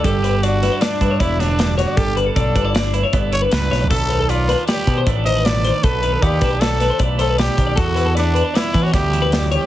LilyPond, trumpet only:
\new Staff \with { instrumentName = "Trumpet" } { \time 5/4 \key b \minor \tempo 4 = 155 g'4 fis'4 d'4 e'8 d'4 fis'8 | g'8 r8 a'4 r4. cis''8 b'4 | a'4 f'4 g'4 r8 dis''8 d''4 | b'4 g'4 a'4 r8 a'8 g'4 |
fis'4 d'4 e'8. fis'16 g'4. g'8 | }